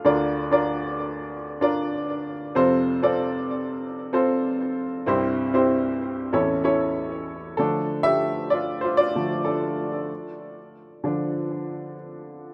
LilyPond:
<<
  \new Staff \with { instrumentName = "Upright piano" } { \time 4/4 \key d \minor \tempo 4 = 96 <d' f' bes' d''>8 r16 <d' f' bes' d''>4~ <d' f' bes' d''>16 r8 <d' f' bes' d''>4 r8 | <c' f' a' c''>8 r16 <c' f' a' d''>4~ <c' f' a' d''>16 r8 <c' f' a' c''>4 r8 | <c' e' g' c''>8 r16 <c' e' g' c''>4~ <c' e' g' c''>16 <cis' e' a' cis''>8 <cis' e' a' cis''>4 r8 | <d' a'>8. <g' e''>8. <f' d''>8 <f' c''>16 <f' d''>8. <d' a'>8. r16 |
r1 | }
  \new Staff \with { instrumentName = "Upright piano" } { \clef bass \time 4/4 \key d \minor <d, d>1 | <f, c>1 | <c, g,>2 <a,, e,>2 | <d f a>4. r4 <d f a>8 r4 |
r4. <d f d'>4. r4 | }
>>